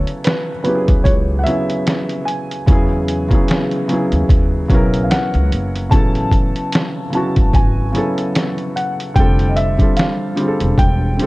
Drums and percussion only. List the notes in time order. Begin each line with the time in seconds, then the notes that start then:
0.07 closed hi-hat
0.24 snare, closed hi-hat
0.65 closed hi-hat
0.88 kick, closed hi-hat
1.05 kick, closed hi-hat
1.47 closed hi-hat
1.70 closed hi-hat
1.87 snare, closed hi-hat
2.09 closed hi-hat
2.28 closed hi-hat
2.51 closed hi-hat
2.67 kick, closed hi-hat
3.08 closed hi-hat
3.31 kick, closed hi-hat
3.48 snare, closed hi-hat
3.71 closed hi-hat
3.89 closed hi-hat
4.12 closed hi-hat
4.29 kick, closed hi-hat
4.70 kick, closed hi-hat
4.94 closed hi-hat
5.11 snare, closed hi-hat
5.34 closed hi-hat
5.52 closed hi-hat
5.76 closed hi-hat
5.92 kick, closed hi-hat
6.15 closed hi-hat
6.32 kick, closed hi-hat
6.56 closed hi-hat
6.72 snare, closed hi-hat
7.13 closed hi-hat
7.36 kick, closed hi-hat
7.53 kick, closed hi-hat
7.95 closed hi-hat
8.18 closed hi-hat
8.35 snare, closed hi-hat
8.58 closed hi-hat
8.77 closed hi-hat
9.00 closed hi-hat
9.16 kick, closed hi-hat
9.39 closed hi-hat
9.57 closed hi-hat
9.79 kick, closed hi-hat
9.97 snare, closed hi-hat
10.37 closed hi-hat
10.60 closed hi-hat
10.78 kick, closed hi-hat
11.19 closed hi-hat